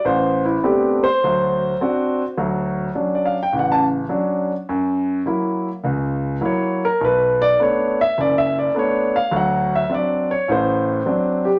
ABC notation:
X:1
M:4/4
L:1/16
Q:"Swing" 1/4=103
K:Dmix
V:1 name="Grand piano"
c2 E2 z2 c8- c z | [K:D] z4 z d =f g ^f a z6 | z12 c2 ^A2 | B2 d2 c2 e2 (3d2 e2 d2 c2 =f2 |
f2 e2 d2 c2 =c6 G2 |]
V:2 name="Grand piano"
A,,,4 [A,B,CDG]2 z2 [D,,F,]4 [CDF]2 z2 | [K:D] [D,,F,]4 [F,CD]2 z2 [A,,,C,]4 [F,CD]2 z2 | F,,4 [F,^A,E]2 z2 [C,,C,]4 [F,A,E]2 z2 | B,,,4 [A,B,D]2 z2 [F,,,F,,]4 [A,B,D]2 z2 |
[D,,F,]4 [F,=CD]2 z2 [A,,,A,,]4 [F,CD]2 z2 |]